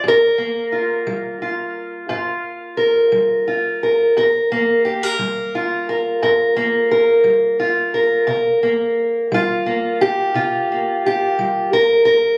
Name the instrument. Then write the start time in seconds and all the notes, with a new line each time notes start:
steel-string acoustic guitar
Already playing: D4
0.04 G2
0.08 A#4
0.38 A#3
0.72 F4
1.07 G3
1.42 F4
2.09 G2 F4
2.77 A#4
3.12 G3
3.48 F4
3.83 A#4
4.17 G2 A#4
4.52 A#3
4.85 G4
5.03 A#4
5.19 G3
5.55 F4
5.89 A#4
6.22 G2 A#4
6.56 A#3
6.91 A#4
7.24 G3
7.60 F4
7.94 A#4
8.27 C3 A#4
8.63 A#3
9.32 G3 F4
9.66 A#3
10.01 G4
10.34 C3 F4
10.72 A#3
11.06 G4
11.39 G3
11.73 A#4
12.05 A#4